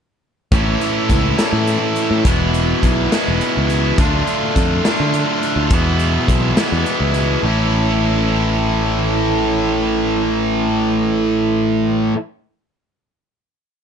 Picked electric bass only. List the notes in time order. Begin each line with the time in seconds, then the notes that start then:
0.52 A1
1.10 C#2
1.53 A2
2.11 A2
2.25 E1
2.83 B1
3.28 E1
3.57 C#2
3.99 D2
4.56 F2
5.00 D3
5.56 D2
5.70 E2
6.28 B1
6.72 E2
7.00 C#2
7.43 A1